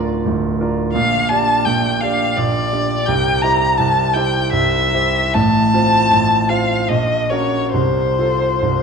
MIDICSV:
0, 0, Header, 1, 3, 480
1, 0, Start_track
1, 0, Key_signature, -1, "major"
1, 0, Tempo, 703400
1, 646, Time_signature, 3, 2, 24, 8
1, 2098, Tempo, 722022
1, 3058, Tempo, 832178
1, 3538, Tempo, 772201
1, 4498, Tempo, 872093
1, 5562, End_track
2, 0, Start_track
2, 0, Title_t, "Violin"
2, 0, Program_c, 0, 40
2, 637, Note_on_c, 0, 77, 79
2, 884, Note_on_c, 0, 81, 79
2, 894, Note_off_c, 0, 77, 0
2, 1129, Note_on_c, 0, 79, 68
2, 1139, Note_off_c, 0, 81, 0
2, 1370, Note_on_c, 0, 77, 69
2, 1380, Note_off_c, 0, 79, 0
2, 1613, Note_on_c, 0, 74, 77
2, 1623, Note_off_c, 0, 77, 0
2, 2094, Note_on_c, 0, 79, 78
2, 2104, Note_off_c, 0, 74, 0
2, 2329, Note_on_c, 0, 82, 79
2, 2339, Note_off_c, 0, 79, 0
2, 2563, Note_on_c, 0, 81, 72
2, 2573, Note_off_c, 0, 82, 0
2, 2805, Note_on_c, 0, 79, 72
2, 2815, Note_off_c, 0, 81, 0
2, 3056, Note_off_c, 0, 79, 0
2, 3060, Note_on_c, 0, 76, 84
2, 3536, Note_on_c, 0, 81, 83
2, 3545, Note_off_c, 0, 76, 0
2, 4244, Note_on_c, 0, 77, 67
2, 4254, Note_off_c, 0, 81, 0
2, 4492, Note_on_c, 0, 75, 65
2, 4501, Note_off_c, 0, 77, 0
2, 4723, Note_on_c, 0, 73, 61
2, 4731, Note_off_c, 0, 75, 0
2, 4959, Note_off_c, 0, 73, 0
2, 4962, Note_on_c, 0, 72, 61
2, 5562, Note_off_c, 0, 72, 0
2, 5562, End_track
3, 0, Start_track
3, 0, Title_t, "Grand piano"
3, 0, Program_c, 1, 0
3, 0, Control_c, 1, 64, 127
3, 0, Note_on_c, 1, 26, 47
3, 0, Note_on_c, 1, 38, 45
3, 0, Note_on_c, 1, 62, 40
3, 0, Note_on_c, 1, 65, 42
3, 0, Note_on_c, 1, 70, 44
3, 150, Note_off_c, 1, 62, 0
3, 151, Note_off_c, 1, 65, 0
3, 153, Note_off_c, 1, 70, 0
3, 175, Note_off_c, 1, 38, 0
3, 175, Note_on_c, 1, 38, 48
3, 177, Note_off_c, 1, 26, 0
3, 177, Note_on_c, 1, 26, 47
3, 401, Note_off_c, 1, 38, 0
3, 402, Note_off_c, 1, 26, 0
3, 413, Note_on_c, 1, 62, 40
3, 414, Note_on_c, 1, 65, 40
3, 416, Note_on_c, 1, 70, 42
3, 625, Note_off_c, 1, 62, 0
3, 626, Note_off_c, 1, 65, 0
3, 627, Note_off_c, 1, 70, 0
3, 646, Note_on_c, 1, 34, 49
3, 646, Note_on_c, 1, 46, 55
3, 656, Control_c, 1, 64, 0
3, 786, Control_c, 1, 64, 127
3, 882, Note_off_c, 1, 34, 0
3, 882, Note_off_c, 1, 46, 0
3, 889, Note_on_c, 1, 62, 39
3, 893, Note_on_c, 1, 67, 42
3, 895, Note_on_c, 1, 74, 41
3, 1108, Note_off_c, 1, 62, 0
3, 1110, Note_off_c, 1, 67, 0
3, 1112, Note_off_c, 1, 74, 0
3, 1135, Note_on_c, 1, 34, 47
3, 1135, Note_on_c, 1, 46, 47
3, 1370, Note_off_c, 1, 34, 0
3, 1370, Note_off_c, 1, 46, 0
3, 1379, Note_on_c, 1, 62, 40
3, 1381, Note_on_c, 1, 67, 44
3, 1384, Note_on_c, 1, 74, 42
3, 1596, Note_off_c, 1, 62, 0
3, 1597, Note_off_c, 1, 67, 0
3, 1598, Note_off_c, 1, 74, 0
3, 1619, Note_on_c, 1, 46, 46
3, 1621, Note_on_c, 1, 34, 49
3, 1851, Note_off_c, 1, 46, 0
3, 1852, Note_off_c, 1, 34, 0
3, 1861, Note_on_c, 1, 67, 40
3, 1862, Note_on_c, 1, 62, 41
3, 1865, Note_on_c, 1, 74, 46
3, 2076, Note_off_c, 1, 62, 0
3, 2076, Note_off_c, 1, 67, 0
3, 2078, Note_off_c, 1, 74, 0
3, 2101, Note_on_c, 1, 48, 54
3, 2102, Note_on_c, 1, 36, 51
3, 2108, Control_c, 1, 64, 0
3, 2207, Control_c, 1, 64, 127
3, 2328, Note_off_c, 1, 48, 0
3, 2329, Note_off_c, 1, 36, 0
3, 2338, Note_on_c, 1, 64, 42
3, 2338, Note_on_c, 1, 67, 42
3, 2339, Note_on_c, 1, 72, 41
3, 2549, Note_off_c, 1, 64, 0
3, 2549, Note_off_c, 1, 67, 0
3, 2549, Note_off_c, 1, 72, 0
3, 2575, Note_on_c, 1, 48, 47
3, 2576, Note_on_c, 1, 36, 48
3, 2804, Note_off_c, 1, 48, 0
3, 2805, Note_off_c, 1, 36, 0
3, 2818, Note_on_c, 1, 64, 42
3, 2820, Note_on_c, 1, 67, 40
3, 2825, Note_on_c, 1, 72, 44
3, 3038, Note_off_c, 1, 64, 0
3, 3039, Note_off_c, 1, 67, 0
3, 3042, Note_off_c, 1, 72, 0
3, 3061, Note_on_c, 1, 48, 43
3, 3065, Note_on_c, 1, 36, 50
3, 3289, Note_off_c, 1, 48, 0
3, 3291, Note_off_c, 1, 36, 0
3, 3299, Note_on_c, 1, 67, 35
3, 3300, Note_on_c, 1, 64, 41
3, 3302, Note_on_c, 1, 72, 40
3, 3517, Note_off_c, 1, 64, 0
3, 3517, Note_off_c, 1, 67, 0
3, 3518, Note_off_c, 1, 72, 0
3, 3537, Note_on_c, 1, 45, 51
3, 3540, Note_on_c, 1, 33, 44
3, 3551, Control_c, 1, 64, 0
3, 3660, Control_c, 1, 64, 127
3, 3772, Note_off_c, 1, 45, 0
3, 3774, Note_off_c, 1, 33, 0
3, 3779, Note_on_c, 1, 60, 38
3, 3781, Note_on_c, 1, 65, 39
3, 3787, Note_on_c, 1, 72, 42
3, 3989, Note_off_c, 1, 60, 0
3, 3991, Note_off_c, 1, 65, 0
3, 3993, Note_off_c, 1, 72, 0
3, 4012, Note_on_c, 1, 45, 45
3, 4013, Note_on_c, 1, 33, 42
3, 4243, Note_off_c, 1, 45, 0
3, 4244, Note_off_c, 1, 33, 0
3, 4250, Note_on_c, 1, 60, 38
3, 4252, Note_on_c, 1, 65, 38
3, 4252, Note_on_c, 1, 72, 42
3, 4473, Note_off_c, 1, 60, 0
3, 4474, Note_off_c, 1, 65, 0
3, 4474, Note_off_c, 1, 72, 0
3, 4495, Note_on_c, 1, 34, 41
3, 4496, Note_on_c, 1, 46, 47
3, 4510, Control_c, 1, 64, 0
3, 4622, Control_c, 1, 64, 127
3, 4717, Note_off_c, 1, 34, 0
3, 4718, Note_off_c, 1, 46, 0
3, 4724, Note_on_c, 1, 61, 35
3, 4728, Note_on_c, 1, 70, 35
3, 4729, Note_on_c, 1, 66, 35
3, 4942, Note_off_c, 1, 61, 0
3, 4944, Note_off_c, 1, 70, 0
3, 4945, Note_off_c, 1, 66, 0
3, 4961, Note_on_c, 1, 48, 45
3, 4964, Note_on_c, 1, 36, 42
3, 4975, Control_c, 1, 64, 0
3, 5084, Control_c, 1, 64, 127
3, 5203, Note_off_c, 1, 48, 0
3, 5204, Note_off_c, 1, 36, 0
3, 5210, Note_on_c, 1, 65, 33
3, 5213, Note_on_c, 1, 69, 38
3, 5434, Note_off_c, 1, 65, 0
3, 5436, Note_off_c, 1, 69, 0
3, 5451, Note_on_c, 1, 36, 43
3, 5452, Note_on_c, 1, 48, 39
3, 5562, Note_off_c, 1, 36, 0
3, 5562, Note_off_c, 1, 48, 0
3, 5562, End_track
0, 0, End_of_file